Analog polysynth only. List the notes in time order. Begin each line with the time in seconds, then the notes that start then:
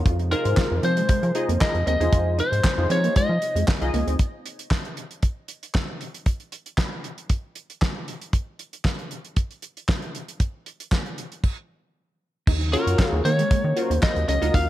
0.31 D#4 F4 G#4 C5
1.22 G#4 A#4
1.35 D#4 F4 G#4 D#5
1.61 D#4 F4 G#4 A#4
1.86 G#4 A#4
2.00 D#4 F4 G#4 C5
2.77 D#4 F4 G#4 C5
3.81 D#4 F4 G#4 D#5
12.73 F4 F#4 A#4 C#5
13.64 A#4 C#5
13.76 F4 F#4 A#4 C#5
14.02 F4 F#4 A#4 C5
14.28 A#4 C#5
14.42 F4 F#4 A#4 D#5